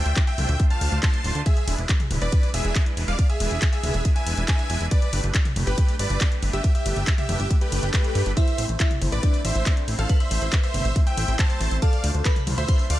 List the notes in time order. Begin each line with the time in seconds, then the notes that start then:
Already playing: A3 F4 E5 G5
0.06 D2, closed hi-hat
0.16 kick, clap, closed hi-hat
0.27 E5 G5, closed hi-hat
0.38 C2 A3 D4 F4 C5, open hi-hat, mid tom
0.49 D2, closed hi-hat
0.60 A3 D4 F4 C5, kick, closed hi-hat
0.70 F5 A5, closed hi-hat
0.81 D2 A3 D4 F4 C5, open hi-hat
0.92 D2 A3 D4 F4 C5, closed hi-hat
1.03 A3 D4 F4 C5 A5 C6, kick, clap, closed hi-hat
1.14 closed hi-hat
1.24 D1 A3 D4 F4 C5, open hi-hat
1.35 D2 A3 D4 F4 C5, closed hi-hat
1.46 G#4 E5, kick, closed hi-hat, ride
1.57 closed hi-hat
1.67 E1 G#3 D4 E4 B4, open hi-hat, ride
1.78 E1, closed hi-hat
1.89 kick, clap, closed hi-hat, ride
2.00 closed hi-hat, mid tom
2.10 D1 G#3 D4 E4 B4, open hi-hat, mid tom, ride
2.21 E1 B4 D5, closed hi-hat
2.32 G#3 D4 E4 B4, kick, closed hi-hat, ride
2.43 closed hi-hat
2.54 E1 G#3 D4 E4 G#4 B4 E5, open hi-hat, ride
2.65 E1 G#3 D4 E4 B4, closed hi-hat
2.76 G#3 D4 E4 B4, kick, clap, closed hi-hat, ride
2.86 closed hi-hat
2.97 E1 G#3 D4 E4 B4, open hi-hat, ride
3.08 E1 G#3 D4 E4 B4 D5 F5, closed hi-hat
3.19 kick, closed hi-hat, ride
3.29 G#4 E5, closed hi-hat
3.40 E1 G#3 D4 E4 B4, open hi-hat, ride
3.51 E1, closed hi-hat
3.62 kick, clap, closed hi-hat, ride
3.72 G#4 E5, closed hi-hat
3.83 D1 G#3 D4 E4 B4, open hi-hat, mid tom, ride
3.94 E1, closed hi-hat
4.05 G#3 D4 E4 B4, kick, closed hi-hat, ride
4.16 E5 G#5, closed hi-hat
4.27 E1 G#3 D4 E4 B4, open hi-hat, ride
4.37 E1 G#3 D4 E4 B4, closed hi-hat
4.48 G#3 D4 E4 B4 E5 G#5, kick, clap, closed hi-hat, ride
4.59 closed hi-hat
4.70 E1 G#3 D4 E4 B4, open hi-hat, ride
4.81 E1 G#3 D4 E4 B4, closed hi-hat
4.91 B4 D5, kick, closed hi-hat, ride
5.02 closed hi-hat
5.13 G1 A3 D4 G4 B4, open hi-hat, ride
5.24 G1, closed hi-hat
5.35 kick, clap, closed hi-hat, ride
5.45 closed hi-hat, mid tom
5.56 F1 A3 D4 G4 B4, open hi-hat, mid tom, ride
5.67 G1 G4 B4, closed hi-hat
5.78 A3 D4 G4 B4, kick, closed hi-hat, ride
5.88 closed hi-hat
5.99 G1 A3 D4 G4 B4 D5, open hi-hat, ride
6.10 G1 A3 D4 G4 B4, closed hi-hat
6.21 A3 D4 G4 B4, kick, clap, closed hi-hat, ride
6.32 closed hi-hat
6.43 G1 A3 D4 G4 B4, open hi-hat, ride
6.53 G1 A3 D4 G4 B4 E5, closed hi-hat
6.64 kick, closed hi-hat, ride
6.75 G4 E5, closed hi-hat
6.86 G1 A3 D4 G4 B4, open hi-hat, ride
6.96 G1, closed hi-hat
7.07 kick, clap, closed hi-hat, ride
7.18 G4 E5, closed hi-hat, mid tom
7.29 F1 A3 D4 G4 B4, open hi-hat, mid tom, ride
7.40 G1, closed hi-hat
7.50 A3 D4 G4 B4, kick, closed hi-hat, ride, swell
7.61 G4 B4, closed hi-hat
7.72 G1 A3 D4 G4 B4, open hi-hat, ride
7.83 G1 A3 D4 G4 B4, closed hi-hat
7.94 A3 D4 G4 B4, kick, clap, closed hi-hat, ride
8.04 closed hi-hat
8.15 G2 A3 D4 G4 B4, open hi-hat, ride
8.26 G1 A3 D4 G4 B4, closed hi-hat
8.37 E4 C5 E5, kick, closed hi-hat, ride
8.48 closed hi-hat
8.58 A1 A3 C4 E4 C5, open hi-hat, ride
8.69 A1, closed hi-hat
8.80 E4 E5, kick, clap, closed hi-hat, ride
8.91 closed hi-hat, mid tom
9.01 G1 A3 C4 E4 C5, open hi-hat, mid tom, ride
9.12 A1 B4 D5, closed hi-hat
9.23 A3 C4 D4 E4 C5 D5, kick, closed hi-hat, ride
9.34 closed hi-hat
9.45 A1 A3 C4 E4 C5 E5, open hi-hat, ride
9.55 A1 A3 C4 E4 C5, closed hi-hat
9.66 A3 C4 E4 C5, kick, clap, closed hi-hat, ride
9.77 closed hi-hat
9.88 A1 A3 C4 E4 C5, open hi-hat, ride
9.98 A1 A3 C4 E4 A4 C5 F5, closed hi-hat
10.09 B4, kick, closed hi-hat, ride
10.20 C5 E5, closed hi-hat
10.31 A1 A3 C4 E4 C5, open hi-hat, ride
10.42 A1, closed hi-hat
10.53 kick, clap, closed hi-hat, ride
10.63 C5 E5, closed hi-hat
10.74 G1 A3 C4 E4 C5, open hi-hat, mid tom, ride
10.85 A1, closed hi-hat
10.96 A3 C4 E4 C5, kick, closed hi-hat, ride
11.07 E5 G5, closed hi-hat
11.17 A1 A3 C4 E4 C5, open hi-hat, ride
11.28 A1 A3 C4 E4 C5, closed hi-hat
11.39 A3 C4 E4 C5 A5, kick, clap, closed hi-hat, ride
11.50 closed hi-hat
11.60 A1 A3 C4 E4 C5, open hi-hat, ride
11.71 A1 A3 C4 E4 C5, closed hi-hat
11.82 A4 D5 F5 A5, kick, closed hi-hat, ride
11.93 closed hi-hat
12.04 D2 A3 D4 F4 C5, open hi-hat, ride
12.15 D2, closed hi-hat
12.25 B4 B5, kick, clap, closed hi-hat, ride
12.36 closed hi-hat, mid tom
12.47 C2 A3 D4 F4 C5, open hi-hat, mid tom, ride
12.58 D2 C5 E5, closed hi-hat
12.68 A3 D4 F4 C5 C6, kick, closed hi-hat, ride
12.79 closed hi-hat
12.90 D2 A3 D4 F4 C5 D5 F5, open hi-hat, ride